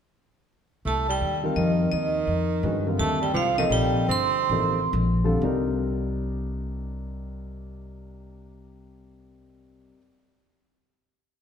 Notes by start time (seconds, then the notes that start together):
0.85 C2 A3 A5
1.09 G3 G5
1.21 D#2
1.43 D#3 G3 C4 F4 A#4
1.56 F2 D#3 D#5
1.92 D#2 D#3 D#5
2.27 F2
2.63 G2 D#3 G#3 C#4 F#4 B4
2.87 D3 G3 C4 F4 A#4
2.98 D#2 A3 A5
3.21 G3 G5
3.34 C2 F3 F5
3.58 C3 D#3 F3 A#3 D#4 A4 D#5
3.70 A#1 G3 G5
4.08 G1 C4 C6
4.49 A1 C3 F3 A#3 D#4 A4
4.93 A#1
5.24 D3 G3 C4 F4 A4
5.42 C2 C3 G3 D4 D#4 A#4